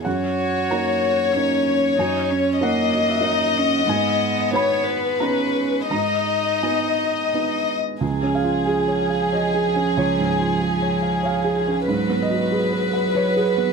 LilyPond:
<<
  \new Staff \with { instrumentName = "Violin section" } { \time 3/4 \key cis \dorian \tempo 4 = 92 cis''2.~ | cis''4 dis''2~ | dis''4 cis''8 b'4. | dis''2~ dis''8 r8 |
gis'2.~ | gis'2. | b'2. | }
  \new Staff \with { instrumentName = "Felt piano" } { \time 3/4 \key cis \dorian << { fis''4 ais''2 | gis''4 fis''8 dis''16 e''16 dis''4 | gis''4 b''4 ais''4 | ais''4 gis''4 r4 |
r8 eis''4. dis''4 | cis''2 eis''4 | r8 dis''4. cis''4 | } \\ { fis,4 <ais dis' cis''>4 <ais dis' cis''>4 | fis,4 <ais dis' cis''>4 <ais dis' cis''>4 | gis,4 <b dis' b'>4 <b dis' b'>4 | gis,4 <b dis' b'>4 <b dis' b'>4 |
\tuplet 3/2 { cis,8 cis'8 eis'8 gis'8 cis''8 eis''8 cis''8 gis'8 cis'8 } | \tuplet 3/2 { cis,8 gis,8 eis'8 gis'8 cis''8 eis''8 cis''8 gis'8 cis'8 } | \tuplet 3/2 { gis,8 b8 fis'8 gis'8 b'8 fis''8 b'8 gis'8 b8 } | } >> }
  \new Staff \with { instrumentName = "Cello" } { \time 3/4 \key cis \dorian fis'2 cis'4 | dis'8 cis'8 ais4 dis'8 cis'8 | b2 cis'4 | dis'2~ dis'8 r8 |
eis2.~ | eis2. | fis2. | }
>>